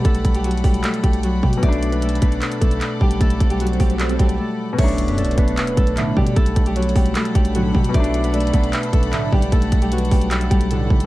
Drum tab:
CC |------------------------------------------------|------------------------------------------------|------------------------------------------------|x-----------------------------------------------|
HH |x--x--x--x--x-x-x-o--x--x--x--x--x--x--------x--|x--x--x--x--x-x-x-x--x--x--x--x--x--x--------x--|x--x--x--x--x-x-x-o--x--x--x--x--x--------------|x--x--x--x--x-x-x-x--x--x--x--x--x--x--------x--|
CP |------------------------x-----------------------|------------------------x-----------x-----------|------------------------x-----------------------|------------------------x-----------x-----------|
BD |o-----o-----------o-----------o-----------o-----|o-----------------o-----------o-----------o-----|o-----o-----------o-----------o-----------------|o-----------------o-----------o-----------o-----|

CC |------------------------------------------------|------------------------------------------------|------------------------------------------------|
HH |x--x--x--x--x-x-x-o--x--x--x--x--x--x--------x--|x--x--x--x--x-x-x-x--x--x--x--x--x--x--------x--|x--x--x--x--x-x-x-o--x--x--x--x--x--x--------x--|
CP |------------------------x-----------------------|------------------------x-----------x-----------|------------------------x-----------------------|
BD |o-----o-----------o-----------o-----------o-----|o-----------------o-----------o-----------o-----|o-----o-----------o-----------o-----------o-----|